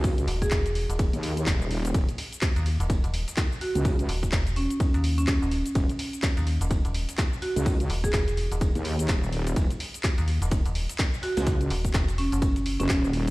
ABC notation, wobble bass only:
X:1
M:4/4
L:1/16
Q:"Swing 16ths" 1/4=126
K:Ebphr
V:1 name="Wobble bass" clef=bass
D,,2 z6 z E,,3 E,,,4 | E,,, z12 z2 D,,- | D,,2 z12 z2 | E,,, z12 z2 D,,- |
D,,2 z6 z E,,3 E,,,4 | E,,, z12 z2 D,,- | D,,2 z8 z G,,, E,,,4 |]